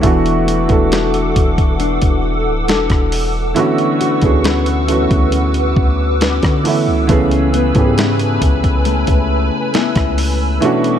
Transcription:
0.00 0.67 E1 loud
0.00 0.58 E3 loud
0.00 3.56 E3 medium
0.00 2.65 A3 medium
0.00 0.59 A3 loud
0.00 0.59 B3 loud
0.00 0.92 D4 medium
0.00 0.47 E4 medium
0.00 3.53 A4 medium
0.00 3.53 F#5 medium
0.00 3.53 D6 medium
0.00 10.58 E6 medium
0.00 kick loud
0.00 closed hi-hat medium
0.05 0.60 D4 loud
0.05 0.60 F#4 loud
0.26 closed hi-hat soft
0.48 0.92 F#4 medium
0.48 closed hi-hat medium
0.68 1.33 E1 loud
0.68 2.18 E3 medium
0.68 2.18 A3 medium
0.68 2.19 B3 medium
0.68 2.19 D4 medium
0.68 kick loud
0.68 closed hi-hat soft
0.72 2.20 A4 loud
0.92 1.80 D4 medium
0.92 2.68 F#4 medium
0.92 2.69 A4 medium
0.92 snare loud
0.92 closed hi-hat medium
1.14 closed hi-hat medium
1.36 1.99 E1 loud
1.36 kick loud
1.36 closed hi-hat medium
1.58 kick loud
1.58 closed hi-hat soft
1.80 2.68 D4 medium
1.80 closed hi-hat medium
2.02 2.48 E1 loud
2.02 kick medium
2.02 closed hi-hat medium
2.46 2.70 D1 loud
2.68 2.89 E1 loud
2.68 4.44 D4 medium
2.68 4.00 F#4 medium
2.68 4.45 A4 medium
2.68 snare loud
2.68 closed hi-hat medium
2.90 3.54 E1 loud
2.90 kick medium
2.90 cross-stick medium
2.90 closed hi-hat medium
3.12 open hi-hat medium
3.54 7.08 D3 medium
3.54 4.11 E3 loud
3.54 4.12 A3 loud
3.54 4.12 B3 loud
3.54 4.13 C#4 loud
3.54 7.06 B4 medium
3.54 7.06 F#5 medium
3.54 5.31 C#6 medium
3.54 closed hi-hat medium
3.59 4.13 F#4 loud
3.78 closed hi-hat soft
4.01 4.44 F#4 medium
4.01 closed hi-hat medium
4.21 5.07 D2 loud
4.21 4.78 E3 medium
4.21 4.78 A3 medium
4.21 4.79 B3 medium
4.21 4.79 C#4 medium
4.21 kick medium
4.21 closed hi-hat soft
4.25 4.80 G#4 medium
4.44 5.32 C#4 medium
4.44 6.21 F#4 medium
4.44 6.22 B4 medium
4.44 snare loud
4.44 closed hi-hat medium
4.66 closed hi-hat medium
4.87 6.37 E3 medium
4.87 6.38 A3 medium
4.87 6.38 B3 medium
4.87 6.39 C#4 medium
4.87 closed hi-hat medium
4.91 6.39 F#4 loud
5.11 5.74 D2 loud
5.11 kick medium
5.11 closed hi-hat soft
5.32 6.20 C#4 medium
5.32 7.07 D6 medium
5.32 closed hi-hat medium
5.54 closed hi-hat medium
5.76 6.40 D2 loud
5.76 kick loud
6.21 7.53 C#4 medium
6.21 7.98 F#4 medium
6.21 8.88 B4 medium
6.21 snare loud
6.21 closed hi-hat medium
6.43 6.89 D3 loud
6.43 kick medium
6.43 cross-stick loud
6.43 closed hi-hat medium
6.63 7.02 E3 loud
6.63 7.02 A3 medium
6.63 7.03 B3 medium
6.63 7.03 C#4 medium
6.63 open hi-hat medium
6.68 7.04 E4 loud
6.87 7.08 C#2 loud
7.07 7.73 C#2 loud
7.07 10.62 C#3 medium
7.07 7.64 E3 loud
7.07 7.65 A3 loud
7.07 7.65 B3 loud
7.07 7.66 C#4 loud
7.07 10.59 B4 medium
7.07 10.59 G#5 medium
7.07 10.59 B5 medium
7.07 kick loud
7.07 closed hi-hat medium
7.12 7.66 G#4 loud
7.31 closed hi-hat soft
7.53 7.98 B3 medium
7.53 closed hi-hat medium
7.74 8.39 G#2 loud
7.74 9.24 E3 medium
7.74 9.25 B3 medium
7.74 9.25 C#4 medium
7.74 9.24 A4 medium
7.74 kick medium
7.74 closed hi-hat soft
7.78 7.83 G4 medium
7.85 9.29 G#4 loud
7.98 9.74 B3 medium
7.98 9.75 E4 medium
7.98 snare loud
7.98 closed hi-hat medium
8.19 closed hi-hat medium
8.42 9.05 C#2 loud
8.42 kick loud
8.42 closed hi-hat medium
8.64 kick medium
8.64 closed hi-hat soft
8.85 9.74 A3 medium
8.85 closed hi-hat medium
9.07 9.50 C#2 loud
9.07 kick medium
9.07 closed hi-hat medium
9.74 10.99 A3 medium
9.74 10.99 B3 medium
9.74 10.99 E4 medium
9.74 snare loud
9.74 closed hi-hat medium
9.96 10.60 C#2 loud
9.96 kick medium
9.96 cross-stick loud
9.96 closed hi-hat soft
10.18 open hi-hat medium
10.60 10.99 B2 medium
10.60 10.99 E3 loud
10.60 10.99 A3 loud
10.60 10.99 C#4 loud
10.60 10.99 D4 loud
10.60 10.99 A4 medium
10.60 10.99 E5 medium
10.60 10.99 C#6 medium
10.60 10.99 D6 medium
10.60 closed hi-hat medium
10.65 10.99 F#4 loud
10.84 closed hi-hat soft

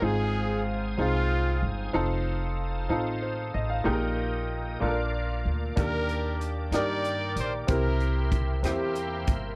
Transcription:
0.01 0.94 G#1 medium
0.01 0.95 G#2 soft
0.01 0.60 C4 medium
0.01 0.60 D#4 soft
0.01 0.61 F4 soft
0.01 0.96 F4 medium
0.01 0.61 G#4 medium
0.01 0.67 G#4 medium
0.01 0.68 G#4 medium
0.01 3.82 C5 soft
0.01 3.82 F5 soft
0.01 1.92 G#5 soft
0.01 1.93 D#6 soft
0.06 0.96 C4 medium
0.97 1.59 C2 medium
0.97 1.56 C4 medium
0.97 1.92 C4 medium
0.97 1.56 D#4 soft
0.97 1.57 F4 soft
0.97 1.68 F4 medium
0.97 1.57 G#4 medium
1.62 1.92 G1 medium
1.93 2.86 F1 medium
1.93 2.52 C4 medium
1.93 2.52 D#4 medium
1.93 2.52 F4 medium
1.93 2.53 A4 medium
1.93 3.85 A5 soft
1.93 4.79 D#6 soft
2.89 3.50 A1 medium
2.89 3.48 C4 medium
2.89 3.48 D#4 medium
2.89 3.48 F4 medium
2.89 3.49 A4 medium
3.22 3.53 C5 soft
3.54 3.84 A1 medium
3.54 3.70 D#5 medium
3.70 4.00 F5 soft
3.84 4.78 A#1 medium
3.84 4.77 A#2 medium
3.84 4.43 A#3 medium
3.84 4.43 D#4 medium
3.84 4.44 G4 medium
3.84 3.93 G#4 medium
3.84 9.55 A#4 soft
3.84 4.81 D#5 soft
3.84 4.81 G5 soft
3.92 4.47 A#4 medium
4.80 5.42 A#1 medium
4.80 5.73 A#2 medium
4.80 5.39 A#3 medium
4.80 5.39 D4 medium
4.80 5.39 F4 medium
4.80 4.89 A4 medium
4.80 5.77 D5 soft
4.80 5.77 F5 soft
4.80 7.66 D6 medium
4.88 5.43 A#4 medium
5.45 5.75 D2 medium
5.76 6.69 D#2 medium
5.76 6.69 D#3 soft
5.76 6.35 A#3 medium
5.76 6.34 D4 medium
5.76 6.70 D4 medium
5.76 6.35 G4 soft
5.76 6.70 G4 medium
5.76 6.38 A#4 medium
5.76 6.35 A#4 medium
5.76 6.38 A#4 medium
5.76 7.68 D5 soft
5.76 9.55 G5 soft
5.76 kick medium
5.76 closed hi-hat medium
6.09 closed hi-hat soft
6.41 closed hi-hat soft
6.71 7.32 G2 medium
6.71 7.30 D4 soft
6.71 7.31 D#4 soft
6.71 7.31 G4 soft
6.71 7.66 G4 medium
6.71 7.31 A#4 medium
6.71 7.66 A#4 medium
6.71 7.66 D5 medium
6.71 7.34 D5 medium
6.71 cross-stick medium
6.71 closed hi-hat medium
7.05 closed hi-hat soft
7.36 7.66 A#1 medium
7.36 7.53 C5 medium
7.36 closed hi-hat medium
7.67 8.60 C2 medium
7.67 8.60 C3 medium
7.67 8.26 C4 medium
7.67 8.26 E4 medium
7.67 8.61 E4 soft
7.67 8.26 G4 medium
7.67 8.61 G4 medium
7.67 8.27 A#4 medium
7.67 8.33 A#4 medium
7.67 8.30 A#4 medium
7.67 9.55 E5 soft
7.67 9.55 C6 medium
7.67 kick medium
7.67 closed hi-hat medium
8.00 closed hi-hat soft
8.32 kick medium
8.32 closed hi-hat soft
8.63 9.23 E2 medium
8.63 9.55 A#3 soft
8.63 9.21 C4 medium
8.63 9.21 E4 soft
8.63 9.55 E4 soft
8.63 9.22 G4 soft
8.63 9.33 G4 medium
8.63 9.22 C5 medium
8.63 cross-stick medium
8.63 closed hi-hat medium
8.68 9.34 G4 medium
8.95 closed hi-hat soft
9.27 9.55 G1 medium
9.27 kick medium
9.27 closed hi-hat medium

